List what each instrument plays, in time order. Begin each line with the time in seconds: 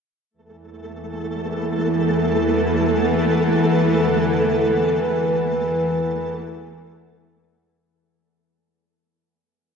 0.31 synth drone E2 E3, synth texture A3 A4, analog synth pad E4
1.00 analog synth pad F#5
1.34 analog synth pad B4
4.01 bass clarinet E3
4.08 bass clarinet D3
5.02 bass clarinet E3